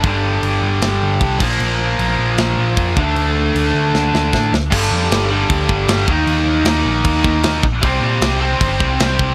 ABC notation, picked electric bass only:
X:1
M:4/4
L:1/8
Q:1/4=154
K:Gm
V:1 name="Picked electric bass" clef=bass
G,,,2 G,,, G,,, G,,, G,,, C,, B,,, | B,,,2 B,,, B,,, B,,, B,,, F,, D,, | D,,2 D,, D,, D,, D,, A,, D,, | G,,, F,, G,,,2 D,, G,,, G,,, E,, |
E,, E,, E,, B,,, E,, E,, E,, B,,, | C,, B,, C,,2 G,,, C,, C,, C,, |]